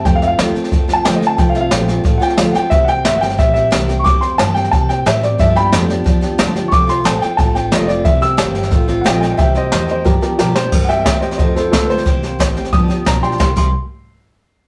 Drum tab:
CC |----------------|----------------|----------------|----------------|
HH |----p-------p---|----p-------p---|----p-------p---|----p-------p---|
SD |o-o-o-ooo-o-o-o-|o-o-o-o-o-ooo-o-|o-o-o-ooo-o-o-o-|o-o-o-ooo-o-o-o-|
BD |o-------o-------|o-------o-------|o-------o-------|o-------o-------|

CC |----------------|----------------|----------------|----------------|
HH |----p-------p---|----p-------p---|----p-------p---|----p-------p---|
SD |o-o-o-o-o-o-o-o-|o-o-o-o-o-o-o-o-|o-o-o-ooo-o-o-o-|o-o-o-o-o-o-o-o-|
BD |o-------o-------|o-------o-------|o-------o-------|o-------o-------|

CC |x---------------|----------------|--x-------------|
HH |----p-------p---|----p-------p---|----------------|
SD |o-o-o-ooo-o-o-oo|o-o-o-ooo-o-o-oo|o---------------|
BD |o---o---o---o---|o---o---o---o---|o-o-------------|